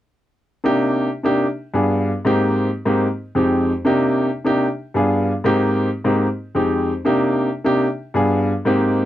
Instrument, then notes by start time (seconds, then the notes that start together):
grand piano
0.64 C3 A#3 D4 D#4 G4
1.23 C3 A#3 D4 D#4 G4
1.74 G2 B3 D4 F4 G#4
2.25 G#2 A#3 C4 D#4 G4
2.85 G#2 A#3 C4 D#4 G4
3.35 F2 G#3 C4 D#4 G4
3.85 C3 A#3 D4 D#4 G4
4.45 C3 A#3 D4 D#4 G4
4.94 G2 B3 D4 F4 G#4
5.44 G#2 A#3 C4 D#4 G4
6.04 G#2 A#3 C4 D#4 G4
6.55 F2 G#3 C4 D#4 G4
7.05 C3 A#3 D4 D#4 G4
7.64 C3 A#3 D4 D#4 G4
8.14 G2 B3 D4 F4 G#4
8.65 G#2 A#3 C4 D#4 G4